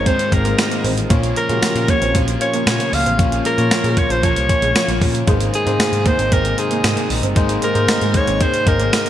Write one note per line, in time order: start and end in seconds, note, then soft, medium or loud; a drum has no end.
0.00 1.12 G#2 medium
0.00 1.06 C3 medium
0.00 0.32 G#3 medium
0.00 1.06 G#3 medium
0.00 1.06 A#3 medium
0.00 1.10 A#3 medium
0.00 0.32 C4 medium
0.00 0.32 D#4 medium
0.00 1.08 F4 medium
0.00 0.33 A#4 loud
0.05 0.56 G#2 medium
0.05 0.57 D#3 medium
0.05 0.58 G#3 medium
0.05 0.14 C4 medium
0.05 0.35 C5 loud
0.05 kick medium
0.05 closed hi-hat medium
0.19 closed hi-hat medium
0.32 0.52 G#1 medium
0.32 0.82 G#3 medium
0.32 0.82 C4 medium
0.32 0.82 D#4 medium
0.32 0.82 A#4 medium
0.32 0.85 A#4 medium
0.32 muted clean electric guitar stroke soft
0.32 kick medium
0.32 closed hi-hat medium
0.45 0.53 A#3 medium
0.45 closed hi-hat medium
0.57 1.09 G#2 medium
0.57 1.11 D#3 medium
0.57 1.11 G#3 medium
0.57 muted clean electric guitar stroke soft
0.57 snare loud
0.57 closed hi-hat medium
0.57 tambourine medium
0.71 0.79 A#3 medium
0.71 closed hi-hat medium
0.84 1.04 A1 medium
0.84 0.92 C4 medium
0.84 open hi-hat medium
0.98 closed hi-hat medium
1.09 1.30 A#1 loud
1.09 2.13 A#2 medium
1.09 1.85 A#2 medium
1.09 5.24 C#3 medium
1.09 5.24 F3 medium
1.09 2.14 F3 medium
1.09 1.35 A#3 medium
1.09 9.10 A#3 medium
1.09 1.18 A#3 medium
1.09 2.15 A#3 loud
1.09 1.35 C#4 medium
1.09 5.24 F4 medium
1.09 1.35 F4 medium
1.09 1.35 C#5 loud
1.09 kick loud
1.09 closed hi-hat medium
1.23 closed hi-hat medium
1.36 1.91 A#4 loud
1.36 muted clean electric guitar stroke soft
1.36 closed hi-hat medium
1.49 1.59 A#2 medium
1.49 1.57 G#3 medium
1.49 2.07 A#3 medium
1.49 2.07 C#4 medium
1.49 2.08 F4 medium
1.49 1.56 F#4 medium
1.49 closed hi-hat soft
1.56 2.11 G4 medium
1.62 muted clean electric guitar stroke soft
1.62 muted picked electric bass stroke soft
1.62 snare loud
1.62 closed hi-hat medium
1.62 tambourine medium
1.76 1.85 A#2 loud
1.76 closed hi-hat medium
1.88 1.96 A#3 medium
1.88 2.15 C#5 loud
1.88 kick medium
1.88 closed hi-hat medium
2.02 2.11 A#1 medium
2.02 2.09 C4 medium
2.02 closed hi-hat medium
2.14 2.34 A#1 loud
2.14 2.65 A#2 medium
2.14 2.66 F3 medium
2.14 2.67 A#3 medium
2.14 2.22 C4 medium
2.14 kick medium
2.14 closed hi-hat medium
2.28 muted clean electric guitar stroke soft
2.28 closed hi-hat medium
2.40 2.90 A#3 medium
2.40 2.90 C#4 medium
2.40 2.91 F4 medium
2.40 2.91 C#5 medium
2.40 2.96 C#5 medium
2.40 closed hi-hat medium
2.54 2.62 A#3 medium
2.54 closed hi-hat medium
2.66 3.17 A#2 medium
2.66 2.77 A#2 loud
2.66 3.18 F3 medium
2.66 3.20 A#3 medium
2.66 snare loud
2.66 closed hi-hat medium
2.66 tambourine medium
2.80 2.88 A#3 medium
2.80 closed hi-hat medium
2.93 3.03 C#2 medium
2.93 3.20 F5 loud
2.93 muted clean electric guitar stroke soft
2.93 open hi-hat medium
3.06 3.16 A1 medium
3.06 3.14 C4 medium
3.06 closed hi-hat medium
3.18 3.39 A#1 loud
3.18 4.22 A#2 medium
3.18 3.93 A#2 medium
3.18 4.23 F3 medium
3.18 3.44 A#3 medium
3.18 4.24 A#3 medium
3.18 3.44 C#4 medium
3.18 3.44 F4 medium
3.18 3.44 C#5 medium
3.18 kick loud
3.18 closed hi-hat medium
3.32 muted clean electric guitar stroke soft
3.32 closed hi-hat medium
3.45 3.53 G#3 medium
3.45 4.00 A#4 loud
3.45 closed hi-hat medium
3.58 3.68 A#2 medium
3.58 4.16 A#3 medium
3.58 3.66 A#3 medium
3.58 4.16 C#4 medium
3.58 4.16 F4 medium
3.58 4.16 C#5 medium
3.58 closed hi-hat soft
3.71 muted picked electric bass stroke soft
3.71 snare loud
3.71 closed hi-hat medium
3.71 tambourine medium
3.84 3.94 A#2 loud
3.84 3.92 G#3 medium
3.84 closed hi-hat medium
3.97 4.13 C#5 loud
3.97 muted clean electric guitar stroke soft
3.97 kick medium
3.97 closed hi-hat medium
4.10 4.20 A#1 medium
4.10 4.18 F3 medium
4.10 4.26 C5 loud
4.10 closed hi-hat medium
4.23 4.33 A#1 loud
4.23 4.74 A#2 medium
4.23 4.31 F3 medium
4.23 4.75 F3 medium
4.23 4.76 A#3 medium
4.23 5.02 C#5 loud
4.23 kick medium
4.23 closed hi-hat medium
4.36 4.46 C2 medium
4.36 closed hi-hat medium
4.49 4.99 A#3 medium
4.49 4.99 C#4 medium
4.49 4.99 F4 medium
4.49 4.99 C#5 medium
4.49 muted clean electric guitar stroke soft
4.49 kick medium
4.49 closed hi-hat medium
4.62 4.72 A#1 medium
4.62 4.70 G#3 medium
4.62 closed hi-hat soft
4.75 5.26 A#2 medium
4.75 5.28 F3 medium
4.75 5.29 A#3 medium
4.75 muted picked electric bass stroke soft
4.75 muted clean electric guitar stroke soft
4.75 snare loud
4.75 closed hi-hat medium
4.75 tambourine medium
4.88 4.98 A#1 medium
4.88 4.96 A#3 medium
4.88 closed hi-hat medium
5.02 5.21 A#2 loud
5.02 5.09 A#3 medium
5.02 kick medium
5.02 open hi-hat medium
5.15 closed hi-hat medium
5.27 5.47 G#1 loud
5.27 6.30 G#2 medium
5.27 6.02 G#2 medium
5.27 9.10 C3 medium
5.27 6.31 D#3 loud
5.27 9.10 G#3 medium
5.27 5.36 G#3 medium
5.27 6.32 G#3 loud
5.27 5.52 A#3 medium
5.27 5.52 D#4 medium
5.27 9.10 D#4 medium
5.27 5.53 G#4 medium
5.27 5.53 C5 loud
5.27 kick loud
5.27 closed hi-hat medium
5.41 closed hi-hat medium
5.54 6.08 G#4 medium
5.54 muted clean electric guitar stroke soft
5.54 closed hi-hat medium
5.66 5.76 G#2 medium
5.66 6.24 A#3 medium
5.66 5.75 C4 medium
5.66 6.25 D#4 medium
5.66 6.25 G#4 medium
5.66 6.25 C5 medium
5.66 closed hi-hat soft
5.80 muted picked electric bass stroke soft
5.80 muted clean electric guitar stroke soft
5.80 snare loud
5.80 closed hi-hat medium
5.80 tambourine medium
5.93 6.03 G#2 medium
5.93 closed hi-hat medium
6.06 6.14 A#3 medium
6.06 6.35 C5 loud
6.06 kick medium
6.06 closed hi-hat medium
6.19 6.29 G#1 medium
6.19 6.27 C4 medium
6.19 closed hi-hat medium
6.31 6.52 G#1 loud
6.31 6.82 G#2 medium
6.31 6.83 D#3 medium
6.31 6.84 G#3 medium
6.31 6.40 C4 medium
6.31 6.60 A#4 loud
6.31 kick medium
6.31 closed hi-hat medium
6.45 muted clean electric guitar stroke soft
6.45 closed hi-hat medium
6.57 7.07 A#3 medium
6.57 7.08 D#4 medium
6.57 7.08 G#4 medium
6.57 7.11 G#4 medium
6.57 7.08 C5 medium
6.57 closed hi-hat medium
6.71 6.79 A#3 medium
6.71 closed hi-hat medium
6.83 7.34 G#2 medium
6.83 6.94 G#2 loud
6.83 7.36 D#3 medium
6.83 7.37 G#3 medium
6.83 snare loud
6.83 closed hi-hat medium
6.83 tambourine medium
6.97 7.05 A#3 medium
6.97 closed hi-hat medium
7.10 7.20 A#1 medium
7.10 muted clean electric guitar stroke soft
7.10 open hi-hat medium
7.23 7.33 G1 medium
7.23 7.31 C4 medium
7.23 closed hi-hat medium
7.35 7.56 G#1 loud
7.35 8.39 G#2 medium
7.35 8.11 G#2 medium
7.35 8.40 D#3 medium
7.35 8.40 G#3 loud
7.35 7.61 A#3 medium
7.35 7.61 D#4 medium
7.35 7.61 G#4 medium
7.35 7.61 C5 loud
7.35 kick loud
7.35 closed hi-hat medium
7.49 muted clean electric guitar stroke soft
7.49 closed hi-hat medium
7.62 7.70 G#3 medium
7.62 8.18 A#4 loud
7.62 closed hi-hat medium
7.75 7.85 G#2 medium
7.75 8.33 A#3 medium
7.75 7.83 A#3 medium
7.75 8.33 D#4 medium
7.75 8.33 G#4 medium
7.75 8.34 C5 medium
7.75 closed hi-hat soft
7.88 muted picked electric bass stroke soft
7.88 snare loud
7.88 closed hi-hat medium
7.88 tambourine medium
8.01 8.11 G#2 medium
8.01 8.09 G#3 medium
8.01 closed hi-hat medium
8.14 8.44 C#5 loud
8.14 muted clean electric guitar stroke soft
8.14 kick medium
8.14 closed hi-hat medium
8.27 8.37 G#1 medium
8.27 8.36 C4 medium
8.27 closed hi-hat medium
8.40 8.91 G#2 medium
8.40 8.92 D#3 medium
8.40 8.93 G#3 medium
8.40 8.49 C4 medium
8.40 8.70 C5 loud
8.40 kick medium
8.40 closed hi-hat medium
8.54 closed hi-hat medium
8.66 8.86 G#1 medium
8.66 9.10 A#3 medium
8.66 9.10 D#4 medium
8.66 9.10 G#4 medium
8.66 9.10 A#4 medium
8.66 muted clean electric guitar stroke soft
8.66 kick medium
8.66 closed hi-hat medium
8.80 8.88 A#3 medium
8.80 closed hi-hat soft
8.92 9.10 G#2 medium
8.92 9.10 D#3 medium
8.92 9.10 G#3 medium
8.92 muted clean electric guitar stroke soft
8.92 snare loud
8.92 closed hi-hat medium
8.92 tambourine medium
9.06 9.10 A#3 medium
9.06 closed hi-hat medium